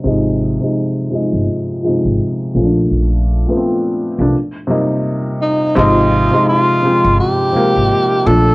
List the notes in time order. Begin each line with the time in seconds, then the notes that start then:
0.04 G#1 C3 F3 G#3 D#4
0.61 C3 F3 G#3 D#4
1.11 C3 F3 G#3 D#4
1.33 G1
1.82 A#2 F3 G#3 D#4
1.88 C3
2.05 G#1
2.53 A#1 A#2 F3 A3 C#4
2.63 D4
2.91 A#1
3.46 A#2 F3 A3 B3
3.57 C4
4.18 C2 A#2 F3 A3 D4
4.67 C3 G3 A#3 D#4
5.41 D#4
5.75 G#1 C3 F3 G#3 D#4 F4
6.31 C3 F3 G#3 D#4
6.49 F4
6.82 C3 F3 G#3 C4
7.04 G1
7.20 G4
7.53 C3 F3 G#3 A#3
7.76 G#1
8.25 A#1 A#2 F3 A3 D4 A4